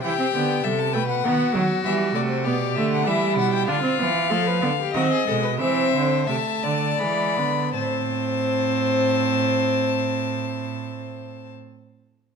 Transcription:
X:1
M:3/4
L:1/16
Q:1/4=90
K:Am
V:1 name="Violin"
g4 e a g ^f4- f | e2 d c d2 e ^f e2 f g | f8 ^d4 | e4 a4 b4 |
a12- | a12 |]
V:2 name="Violin"
G4 A2 B2 ^F4- | ^F4 G4 E4 | F4 A B A G ^F ^G A B | c4 e2 d6 |
c12- | c12 |]
V:3 name="Viola"
E C B,2 G,2 A,2 B,2 ^F,2 | G,2 A,2 B,2 A,2 G,4 | D C B,2 A,2 B,2 ^B,2 ^G,2 | C4 A,4 ^G,2 B,2 |
C12- | C12 |]
V:4 name="Cello" clef=bass
E,2 D,2 C,2 B,,2 ^D,2 D,2 | E,2 C,2 B,,2 D,2 E,2 B,,2 | D,2 E,2 F,2 D,2 ^D,2 B,,2 | E,2 D,2 C,2 D,2 E,2 D,2 |
A,,12- | A,,12 |]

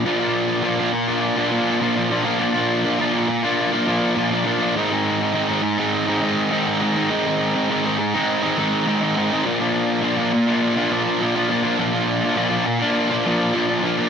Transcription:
X:1
M:4/4
L:1/16
Q:1/4=102
K:Bbmix
V:1 name="Distorted electric guitar"
[B,,F,B,DF] [B,DF]3 [B,,F,B,DF] [B,DF]2 [B,DF]2 [B,DF] [F,B,DF]2 [B,,F,B,DF] [B,DF] [F,B,DF] [B,DF] | [B,,F,B,DF] [B,DF]3 [B,,F,B,DF] [B,DF]2 [B,DF]2 [B,DF] [F,B,DF]2 [B,,F,B,DF] [B,DF] [F,B,DF] [B,DF] | [A,,E,A,CE] [A,CE]3 [A,,E,A,CE] [A,CE]2 [A,CE]2 [A,CE] [E,A,CE]2 [A,,E,A,CE] [A,CE] [E,A,CE] [A,CE] | [A,,E,A,CE] [A,CE]3 [A,,E,A,CE] [A,CE]2 [A,CE]2 [A,CE] [E,A,CE]2 [A,,E,A,CE] [A,CE] [E,A,CE] [A,CE] |
[B,,F,B,DF] [B,DF]3 [B,,F,B,DF] [B,DF]2 [B,DF]2 [B,DF] [F,B,DF]2 [B,,F,B,DF] [B,DF] [F,B,DF] [B,DF] | [B,,F,B,DF] [B,DF]3 [B,,F,B,DF] [B,DF]2 [B,DF]2 [B,DF] [F,B,DF]2 [B,,F,B,DF] [B,DF] [F,B,DF] [B,DF] |]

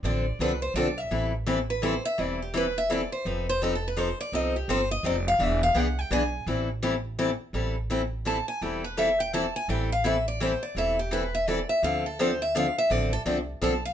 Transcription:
X:1
M:3/4
L:1/16
Q:"Swing" 1/4=168
K:Am
V:1 name="Steel-string acoustic guitar"
d4 B2 c2 d2 e2- | e2 z4 B2 c2 e2 | d2 G2 B2 e2 d2 c2 | B2 c2 (3B2 A2 B2 c2 d2 |
_e2 G2 c2 e2 d2 f2 | e2 f2 ^f2 g2 ^g4 | z12 | z8 a2 ^g2 |
g2 B2 e2 g2 a2 ^g2 | g2 f2 e2 d2 c2 d2 | e2 G2 B2 e2 d2 e2 | f2 A2 c2 e2 f2 e2 |
d2 A2 z4 a2 f2 |]
V:2 name="Steel-string acoustic guitar"
[D,F,CDA]2 z2 [D,F,CDA] z3 [D,F,CDA] z3 | [E,G,CEA]2 z2 [E,G,CEA] z3 [E,G,CEA] z3 | [E,G,CEA]2 z2 [E,G,CEA] z3 [E,G,CEA] z3 | [F,C_EA]2 z2 [F,CEA] z3 [F,CEA] z3 |
[F,C_EA]2 z2 [F,CEA] z3 [F,CEA] z3 | [E,B,D^G]2 z2 [E,B,DG] z3 [E,B,DG] z3 | [E,G,CEA]2 z2 [E,G,CEA] z3 [E,G,CEA] z3 | [E,G,CEA]2 z2 [E,G,CEA] z3 [E,G,CEA] z3 |
[E,G,CEA]2 z2 [E,G,CEA] z3 [E,G,CEA] z3 | [E,G,CEA]2 z2 [E,G,CEA] z3 [E,G,CEA] z3 | [E,G,CEA]2 z2 [E,G,CEA] z3 [E,G,CEA] z3 | [D,F,CDA]2 z2 [D,F,CDA] z3 [D,F,CDA] z3 |
[D,F,CDA]2 z2 [D,F,CDA] z3 [D,F,CDA] z3 |]
V:3 name="Upright bass" clef=bass
A,,,4 C,,4 B,,,4 | A,,,12 | E,,,12 | F,,,12 |
C,,4 G,,,4 F,,,4 | E,,,4 C,,4 B,,,4 | A,,,12 | A,,,12 |
E,,,12 | A,,,12 | E,,,12 | D,,12 |
A,,,4 C,,4 B,,,4 |]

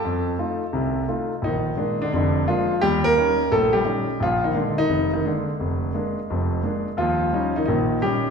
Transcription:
X:1
M:4/4
L:1/8
Q:"Swing" 1/4=173
K:Bb
V:1 name="Grand piano"
[Aa]6 z2 | [E,E]3 [D,D] [D,D]2 [F,F]2 | [G,G] [B,B]3 [A,A] [G,G]3 | [F,F] [E,E] D, [E,E]2 [E,E] D,2- |
D,2 z6 | [F,F]3 [E,E] [E,E]2 G2 |]
V:2 name="Grand piano" clef=bass
F,,2 [A,EF] z [C,,C,]2 [A,EF] z | B,,,2 [_A,B,D] z [F,,,F,,]2 [A,B,D] z | E,,2 [G,_DE] z B,,,2 [G,DE] z | B,,,2 [_A,B,D] z F,,,2 [A,B,D] z |
F,,,2 [_A,B,D] z [F,,,F,,]2 [A,B,D] z | E,,2 [G,_DE] z [B,,,B,,]2 [G,DE] z |]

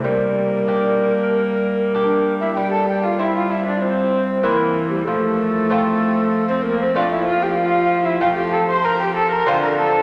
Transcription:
X:1
M:4/4
L:1/16
Q:1/4=96
K:F
V:1 name="Recorder"
B12- B3 e | g a g f e f e d c3 z B3 G | A8- A c B c d e f g | f3 e f g a c' b g a b c' b a2 |]
V:2 name="Viola"
B,12- B,3 E | G A G F E F E D C4 B,3 G, | A,8- A, C B, C D E F G | F3 E F G A c B G A B c B A2 |]
V:3 name="Lute"
z4 [DG]4 z4 [DG]4 | z4 [CE]4 z4 [CE]4 | z4 [A,CF]4 z4 [A,CF]4 | z4 [A,CF]4 z4 [A,CF]4 |]
V:4 name="Lute" clef=bass
G,16 | G,12 E,4 | F,16- | F,12 D,4 |]
V:5 name="Cello" clef=bass
G,16 | G,12 E,4 | F,16- | F,12 D,4 |]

